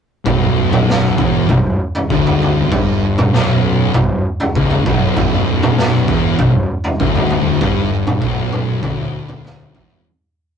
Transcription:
0.25 B0 B1, kick, floor tom
0.73 floor tom, mid tom
0.90 snare
1.18 E1 E2, kick
1.49 B0 B1, kick, floor tom
1.95 floor tom
2.10 D1 D2, kick
2.26 floor tom
2.42 floor tom
2.71 G1 G2, kick, floor tom
3.18 floor tom, mid tom
3.33 B0 B1, snare
3.93 B0 B1, kick, floor tom
4.40 floor tom
4.55 C#1 C#2, kick
4.70 floor tom
4.85 B0 B1, kick, floor tom
5.16 B0 B1, kick, floor tom
5.63 floor tom, mid tom
5.78 snare
6.08 E1 E2, kick
6.39 B0 B1, kick, floor tom
6.84 floor tom
7.00 D1 D2, kick
7.15 floor tom
7.30 floor tom
7.61 G1 G2, kick, floor tom
8.07 floor tom, mid tom
8.21 B0 B1, kick
8.52 mid tom
8.82 D1 D2, kick, floor tom, mid tom
9.29 floor tom, mid tom
9.44 snare, floor tom
9.60 floor tom
9.74 E1 E2, kick, floor tom
9.90 floor tom

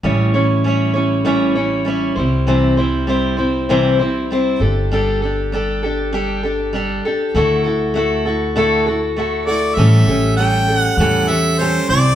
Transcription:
0.03 A1 A2 E3 G3 C#4 E4 C#5
0.34 G3 C#4 E4 C#5
0.64 G3 C#4 E4 C#5
0.94 G3 C#4 E4 C#5
1.25 A2 E3 G3 C#4 E4 C#5
1.55 G3 C#4 E4 C#5
1.85 G3 C#4 E4 C#5
2.16 C2 G3 C4 E4 C5
2.47 C3 E3 G3 C4 E4 C5
2.77 G3 C4 E4 C5
3.07 G3 C4 E4 C5
3.37 G3 C4 E4 C5
3.69 C3 E3 G3 C4 E4 C5
3.99 G3 C4 E4 C5
4.31 G3 C4 E4 C5
4.60 G1 D4 G4 A4
4.91 G3 D4 G4 A4
5.22 D4 G4 A4
5.52 G3 D4 G4 A4
5.83 D4 G4 A4
6.12 G3 D4 G4 A4
6.43 D4 G4 A4
6.73 G3 D4 G4 A4
7.05 D4 G4 A4
7.34 D2 D3 A3 E4 F#4 A4
7.64 E4 F#4 A4
7.94 A3 E4 F#4 A4
8.25 E4 F#4 A4
8.56 D3 A3 E4 F#4 A4
8.87 E4 F#4 A4
9.16 A3 E4 F#4 A4
9.46 F#4 A4 D5
9.50 E4
9.75 A1 A2 E3 G3 C#4 G4 E5
9.79 A4
10.07 A1 G3 C#4 G4 A4
10.37 G3 C#4 G4 A4 G5
10.68 G3 C#4 G4 A4
10.78 F#5
10.97 E2 A2 E3 G3 C#4 G4 A4 F#5
11.28 G3 C#4 G4 A4 E5
11.59 G3 C#4 G4 A4 C5
11.89 C2 G3 C4 E4 C5 D5

